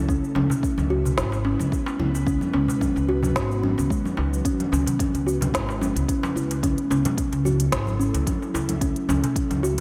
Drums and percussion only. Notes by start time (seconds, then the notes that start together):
0.09 kick, cabasa
0.24 cabasa
0.35 darbuka tek, low conga
0.50 darbuka ka, darbuka dum, cabasa
0.63 kick, cabasa
0.78 darbuka ka, low conga, cabasa
0.90 darbuka tek
1.05 darbuka dum, cabasa
1.18 kick, snare, low conga, cabasa
1.32 darbuka tek, cabasa
1.45 darbuka ka
1.60 low conga, cabasa
1.72 kick, cabasa
1.86 darbuka ka, darbuka tek, cabasa
2.00 low conga
2.15 darbuka ka, cabasa
2.27 kick, cabasa
2.41 low conga, cabasa
2.53 darbuka tek
2.68 darbuka ka, darbuka dum, cabasa
2.81 kick, low conga, cabasa
2.96 darbuka ka, cabasa
3.09 darbuka tek
3.23 darbuka dum, low conga, cabasa
3.36 kick, snare, cabasa
3.51 cabasa
3.63 low conga
3.78 darbuka ka, cabasa
3.90 kick, cabasa
4.05 darbuka ka, low conga, cabasa
4.17 darbuka tek
4.34 cabasa
4.45 kick, closed hi-hat, cabasa
4.60 closed hi-hat, low conga
4.73 darbuka tek, cabasa
4.87 closed hi-hat, darbuka ka, darbuka dum, cabasa
4.99 kick, closed hi-hat, low conga, cabasa
5.15 closed hi-hat, darbuka ka, cabasa
5.26 darbuka tek, cabasa
5.41 closed hi-hat, darbuka dum, low conga, cabasa
5.54 kick, snare, closed hi-hat, cabasa
5.69 darbuka tek, cabasa
5.81 darbuka ka, low conga, cabasa
5.97 closed hi-hat, cabasa
6.08 kick, closed hi-hat, cabasa
6.23 darbuka ka, darbuka tek, low conga, cabasa
6.37 cabasa
6.51 closed hi-hat, darbuka ka, cabasa
6.63 kick, closed hi-hat, low conga, cabasa
6.78 closed hi-hat
6.91 darbuka tek, cabasa
7.05 closed hi-hat, darbuka ka, low conga, darbuka dum, cabasa
7.18 kick, closed hi-hat, cabasa
7.33 closed hi-hat, darbuka ka, cabasa
7.45 low conga, cabasa
7.60 closed hi-hat, cabasa
7.72 kick, snare, closed hi-hat, cabasa
7.87 low conga, cabasa
8.01 cabasa
8.14 closed hi-hat, darbuka ka, cabasa
8.27 kick, closed hi-hat, low conga, cabasa
8.42 darbuka ka, cabasa
8.55 darbuka tek, cabasa
8.69 closed hi-hat, low conga, cabasa
8.81 kick, closed hi-hat, cabasa
8.96 closed hi-hat
9.09 darbuka tek, low conga, cabasa
9.24 closed hi-hat, darbuka ka, darbuka dum, cabasa
9.36 kick, closed hi-hat, cabasa
9.51 closed hi-hat, darbuka ka, low conga, cabasa
9.63 darbuka tek, cabasa